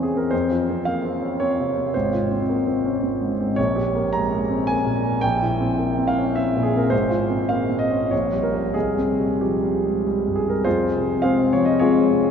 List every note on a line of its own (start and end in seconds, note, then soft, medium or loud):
0.00 0.28 E2 soft
0.00 0.25 E3 soft
0.00 0.34 A#3 soft
0.00 0.15 C4 soft
0.00 0.34 C#4 soft
0.00 0.34 G4 soft
0.00 0.18 G#4 medium
0.00 0.31 C5 soft
0.15 0.33 C4 soft
0.15 0.31 A#4 soft
0.31 1.91 F2 soft
0.31 0.85 C5 medium
0.51 0.79 F4 soft
0.69 0.97 C4 soft
0.85 1.04 A#3 soft
0.85 1.40 F5 medium
1.05 1.33 C4 soft
1.21 1.40 C#4 soft
1.40 1.70 C4 soft
1.40 1.94 C#5 medium
1.60 1.88 C3 soft
1.77 1.95 C4 soft
1.94 3.55 G#1 soft
1.94 3.30 C5 medium
2.13 2.41 F4 soft
2.32 2.59 C4 soft
2.49 2.66 A#3 soft
2.67 2.95 C4 soft
2.85 3.03 C#4 soft
3.03 3.32 C4 soft
3.21 3.51 G#2 soft
3.41 3.59 C4 soft
3.56 5.20 A#1 soft
3.56 4.13 C#5 medium
3.76 4.06 G4 soft
3.95 4.24 A#3 soft
4.13 4.32 G#3 soft
4.13 4.67 A#5 medium
4.33 4.61 A#3 soft
4.49 4.68 C4 soft
4.67 4.98 A#3 soft
4.67 5.23 G#5 medium
4.86 5.16 A#2 soft
5.04 5.23 A#3 soft
5.21 6.88 A#1 soft
5.21 6.08 G5 medium
5.42 5.73 E4 soft
5.60 5.91 C4 soft
5.79 5.98 A#3 soft
5.97 6.28 C4 soft
6.07 6.36 F5 medium
6.18 6.37 C#4 soft
6.36 6.67 C4 soft
6.36 6.64 E5 medium
6.57 6.86 A#2 soft
6.63 6.78 G#4 medium
6.75 6.93 C4 soft
6.75 6.92 A#4 soft
6.90 8.07 G#1 soft
6.90 7.49 C5 medium
7.10 7.41 F4 soft
7.30 7.62 C4 soft
7.49 7.70 A#3 soft
7.49 7.80 F5 medium
7.70 8.03 C4 soft
7.79 8.11 D#5 medium
7.91 8.11 C#4 soft
8.11 8.73 A#1 soft
8.11 8.42 C#5 medium
8.33 8.66 G3 soft
8.43 8.74 A#4 soft
8.55 8.73 A#3 soft
8.55 8.74 C#4 soft
8.74 10.63 C2 soft
8.74 9.40 G#4 medium
8.98 9.33 C4 soft
9.20 9.54 G3 soft
9.41 9.64 F3 soft
9.41 10.36 G4 soft
9.64 9.97 G3 soft
9.86 10.05 G#3 soft
10.07 10.39 G3 soft
10.28 10.59 G2 soft
10.36 10.51 G#4 soft
10.47 10.66 G3 soft
10.47 10.65 A#4 soft
10.64 12.31 F2 soft
10.64 11.19 F4 soft
10.64 11.19 G#4 soft
10.64 11.22 C5 medium
10.97 11.42 C3 soft
11.22 11.50 G#3 soft
11.22 11.50 C4 soft
11.22 11.50 G#4 soft
11.22 11.50 C5 soft
11.22 11.52 F5 medium
11.53 12.00 F3 soft
11.53 11.67 C#5 medium
11.65 11.81 D#5 medium
11.79 12.08 G#3 soft
11.79 12.08 C4 soft
11.79 12.31 F4 soft
11.79 12.31 G#4 medium
11.79 12.31 C#5 medium
12.12 12.31 C3 soft